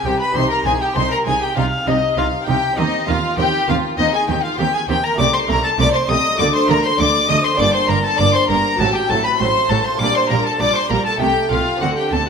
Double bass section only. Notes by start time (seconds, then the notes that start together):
0.05 C2
0.35 C2
0.65 C2
0.96 C2
1.27 C2
1.57 C2
1.88 C2
2.18 C2
2.48 C2
2.78 D#2
3.09 D#2
3.38 D#2
3.68 D#2
3.98 D#2
4.28 D#2
4.58 D#2
4.89 D#2
5.19 C2
5.49 C2
5.79 C2
6.09 C2
6.40 D2
6.69 D2
7.00 D2
7.29 D2
7.59 G1
7.89 G1
8.20 G1
8.50 G1
8.80 A1
9.10 A1
9.40 A1
9.70 A1
10.00 A#1
10.30 A#1
10.60 A#1
10.90 A#1
11.20 C2
11.51 C2
11.81 D2
12.12 D2